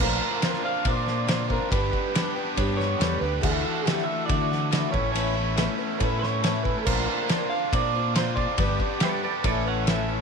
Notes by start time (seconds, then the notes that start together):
0.00 A#1 A#2 D3 A#3 C4 D4 F4 A#4 C5
0.21 A#3 D4 F4 C5
0.25 D4
0.41 D3 A#3 D4 F4 A#4 C5, snare, ride bell
0.53 snare
0.63 A#3 D4 F4 C5 F5
0.84 A#2 A#3 D4 F4 A#4 C5 D5, kick, ride bell
1.06 D4 F4 C5, snare
1.27 A#2 D3 A#3 D4 F4 A#4 C5, snare, ride bell
1.48 A#3 D4 F4 A#4 C5, kick
1.69 G1 G2 D3 G3 B3 D4 G4 B4, kick, ride bell
1.92 G3 B3 D4 G4 B4, kick
2.13 G3 B3 D4 G4 B4, snare, ride bell
2.17 B4
2.36 G3 B3 D4 G4 B4
2.56 G2 G3 D4 G4 B4 C#5, kick, ride bell
2.77 D4 G4 B4 C#5, snare
2.97 E2 G2 D3 G3 B3 D4 G4 A4, ride bell
3.02 B4, snare
3.18 D2 G4 B4
3.22 G3 B3 D4
3.40 D2 D3 E3 A3 D4 E4 F#4 A4 D5, kick, crash
3.44 D4
3.64 A3 D4 E4 F#4
3.83 D3 E3 A3 D4 E4 F#4 A4
3.87 G4, snare, ride bell
3.99 snare
4.04 F#4 E5
4.08 A3 D4 E4
4.25 E3 A3 E4 F#4 D5, ride bell
4.30 D3 F#4, kick
4.51 A3 E4 F#4, snare
4.70 D3 E3 A3 D4 E4 F#4 D5, snare, ride bell
4.90 A1 A2 E3 A3 B3 C#4 E4 A4 B4 C#5, kick
4.95 C#4 E4 A4
5.12 A2 E3 A3 C#4 E4 C#5, ride bell
5.17 B4
5.34 A3 C#4 E4 B4
5.56 E3 A3 C#4 E4 A4 B4 E5, snare, ride bell
5.78 A3 C#4 E4 B4
5.97 A2 A3 A4 B4 C#5, kick, ride bell
6.02 C#4 E4 B4
6.19 C#5
6.23 C#4 E4 B4, snare
6.41 A2 E3 A3 C#4 A4 B4 C#5, snare, ride bell
6.45 E4 B4
6.63 A3 E4 B4, kick
6.67 C#4
6.78 A4
6.84 A#1 A#2 D3 A#3 C4 D4 F4 A#4 C5 D5, kick, crash
6.88 A#4
7.07 A#3 D4 F4 C5
7.28 D3 A#3 D4 F4 A#4 C5 D5, snare, ride bell
7.50 A#3 F4 C5 F5
7.54 D4
7.72 A#2 A#3 D4 F4 A#4 C5 D5, kick, ride bell
7.94 D4 F4 C5
8.14 A#2 D3 A#3 D4 F4 A#4 C5 D5, snare, ride bell
8.18 C5
8.35 A#3 D4 C5 D5, kick
8.40 D4 F4
8.57 G1 G2 D3 G3 B3 D4 G4 B4 D5, kick, ride bell
8.80 G3 B3 D4 G4 B4, kick
9.00 G3 B3 D4 G4 A4 B4 D5 E5, snare, ride bell
9.04 G4 B4
9.23 G3 B3 D4 G4 A4 B4 D5
9.43 A1 A2 E3 A3 C#4 E4 A4 B4 C#5 D5, kick, ride bell
9.47 B4
9.66 C#4 E4 B4 C#5 F#5
9.87 A2 E3 A3 C#4 E4 A4 B4 E5, snare, ride bell
10.08 A3 C#4 E4 A4 B4